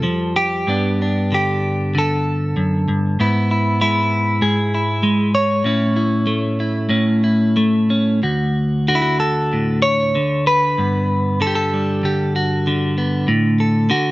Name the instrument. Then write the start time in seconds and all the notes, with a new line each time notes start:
clean electric guitar
Already playing: F2 G3 A4
0.03 F3
0.36 G4
0.67 G2 B3 D4
1.02 D4
1.32 D3 G4
1.95 D3 A4
2.57 F#2
2.88 G2
3.20 G#2 B3 E4
3.51 E4
3.81 G#3 E4
4.42 G#2 G#4
4.75 E4
5.03 G#3
5.35 C#5
5.64 A2 C#4 E4
5.96 E4
6.27 A3
6.60 E4
6.89 A2 C#4
7.24 E4
7.57 A3
7.90 C#4
8.23 D2 F#4
8.88 D3 F#4
8.95 E4
9.02 F#4
9.20 A4
9.53 A2
9.82 C#5
10.15 D3
10.47 B4
10.78 G2 B3
11.41 D3 A4
11.47 G4
11.55 A4
11.74 G3
12.03 D3 G4
12.36 F#4
12.67 D3
12.98 B3
13.28 A2
13.60 A4
13.90 D3 F#4